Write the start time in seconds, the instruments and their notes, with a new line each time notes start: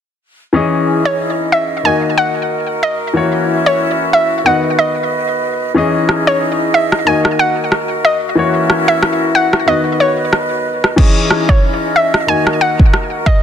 0.53 grand piano E3 C#4 G#4 D#5, flute section C#4 D#4 E4 G#4 D#5
1.05 synth pluck C#5
1.52 synth pluck E5
1.83 grand piano D#3 A#3 F#4 D#5, flute section F#4 A#4, synth pluck G#5
2.18 synth pluck F#5
2.83 synth pluck D#5
3.13 grand piano E3 A#3 F#4 C#5, flute section C#4 E4 E5
3.66 synth pluck C#5
4.13 synth pluck E5
4.44 grand piano D#3 B3 F#4 D#5, flute section B4 D#5, synth pluck F#5
4.79 synth pluck D#5
5.74 grand piano E3 C#4 G#4 D#5, flute section C#4 D#4 E4 G#4 D#5
6.09 cross-stick
6.27 synth pluck C#5
6.74 synth pluck E5
6.92 cross-stick
7.05 grand piano D#3 A#3 F#4 D#5, flute section F#4 A#4, synth pluck G#5
7.25 cross-stick
7.39 synth pluck F#5
7.72 cross-stick
8.05 synth pluck D#5
8.35 grand piano E3 A#3 F#4 C#5, flute section C#4 E4 A#4 E5
8.70 cross-stick
8.88 synth pluck E5
9.03 cross-stick
9.35 synth pluck F#5
9.53 cross-stick
9.66 grand piano D#3 B3 F#4 B4, flute section B4 D#5, synth pluck D#5
10.00 synth pluck C#5
10.33 cross-stick
10.84 cross-stick
10.96 grand piano E3 C#4 G#4 D#5, flute section C#4 D#4 E4 G#4 D#5, kick, crash
11.31 cross-stick
11.49 synth pluck C#5, kick
11.96 synth pluck E5
12.14 cross-stick
12.27 grand piano D#3 A#3 F#4 D#5, flute section F#4 A#4, synth pluck G#5
12.47 cross-stick
12.61 synth pluck F#5
12.79 kick
12.94 cross-stick
13.26 synth pluck D#5, kick